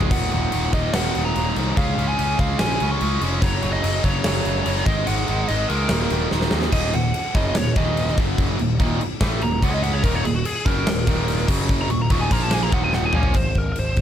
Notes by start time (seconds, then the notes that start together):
Already playing: G#2 D#3 G#3
0.01 floor tom
0.11 D#1 D#2 A#2 D#3 F#5, kick, crash
0.31 D#1 D#2 A#2 D#3, crash
0.42 F#5
0.52 D#1 D#2 A#2 D#3, crash
0.73 D#1 D#2 A#2 D#3 D#5, kick, crash
0.94 D#1 D#2 A#2 D#3 F#5, snare, crash
1.15 D#1 D#2 A#2 D#3, crash
1.25 A#5
1.35 D#1 D#2 A#2 D#3, crash
1.56 C2 D#2 A#2 D#3, crash
1.77 C#2 C#3 G#3 C#4 F5, kick, crash
1.98 C#2 C#3 G#3 C#4, crash
2.08 G#5
2.18 C#2 C#3 G#3 C#4, crash
2.39 C#2 C#3 G#3 C#4 F5, kick, crash
2.59 A#1 C#3 G#3 C#4 G#5, snare, crash
2.80 C#2 C#3 G#3 C#4, crash
2.91 C#6
3.01 C#2 C#3 G#3 C#4, crash
3.21 F1 C#3 G#3 C#4, crash
3.42 F#1 F#2 C#3 F#3 C#5, kick, crash
3.62 F#1 F#2 C#3 F#3, crash
3.73 D#5
3.83 F#1 F#2 C#3 F#3, crash
4.04 F#1 F#2 C#3 F#3 C#5, kick, crash
4.24 F#1 F#2 C#3 F#3, snare, crash
4.45 F#1 F#2 C#3 F#3, crash
4.66 F#1 F#2 C#3 F#3, crash
4.76 snare
4.86 G#1 G#2 D#3 G#3 D#5, kick, crash
5.07 G#1 G#2 D#3 G#3 F#5, crash
5.28 G#1 G#2 D#3 G#3, crash
5.48 G#1 G#2 D#3 G#3 D#5, crash
5.68 C#2 G#2 D#3 G#3 A#4, crash
5.89 D#1 D#2 A#2 D#3, snare, crash
6.10 D#1 D#2 A#2 D#3, crash
6.31 D#1 D#2 A#2 D#3, snare
6.41 snare
6.51 D#2 A#2 D#3, snare
6.62 snare
6.72 D#1 D#2 A#2 D#3 D#5, kick, crash
6.93 D#1 D#2 A#2 F#5, crash
7.14 crash
7.35 F#1 F#2 C#3 F#3 D#5, kick, crash
7.55 D#1 D#2 A#2 C#5, snare, crash
7.76 D#1 D#2 A#2 D#3 D#5, kick, crash
7.97 crash
8.08 snare
8.18 F#1 F#2 C#3 F#3, kick, crash
8.38 kick, crash
8.59 D#1 D#2 A#2, crash
8.80 D#1 D#2 A#2 D#3, kick, crash
9.01 muted distorted electric guitar stroke, muted picked electric bass stroke, crash
9.21 A1 A2 E3 A3, kick, snare, crash
9.41 D#1 D#2 A#2 A#5, crash
9.62 C#2 C#3 G#3 C#4 F#5, kick, crash
9.74 D#5
9.83 F#5, crash
9.94 C#5
10.04 D#1 D#2 A#2 D#3 A#4, kick, crash
10.15 C#5
10.25 D#1 D#2 A#2 G#4, crash
10.35 F#4
10.45 G#4, crash
10.66 F#1 F#2 C#3 F#3 A#4, kick, crash
10.87 D#1 D#2 A#2, snare, crash
11.07 D#1 D#2 A#2 D#3, kick, crash
11.28 crash
11.38 snare
11.48 F#1 F#2 C#3 F#3, kick, crash
11.69 kick, crash
11.81 A#5
11.90 D#1 D#2 A#2 C#6, crash
12.02 A#5
12.10 D#1 D#2 A#2 D#3 C#6, kick, crash
12.21 G#5
12.31 A#1 A#2 F3 A#3 A#5, kick, crash
12.43 A5
12.51 G#5, snare, crash
12.63 A#5
12.72 D#1 D#2 A#2 D#3 F#5, kick, crash
12.84 G#5
12.93 F#5, snare
13.05 G#5
13.13 A#1 A#2 F3 A#3 C#5 G#5, mid tom
13.23 floor tom
13.34 G#1 C5, kick, crash
13.55 G#1 A#4, kick, crash
13.72 A#4, crash
13.78 G#1 C5
13.96 G#1, kick, crash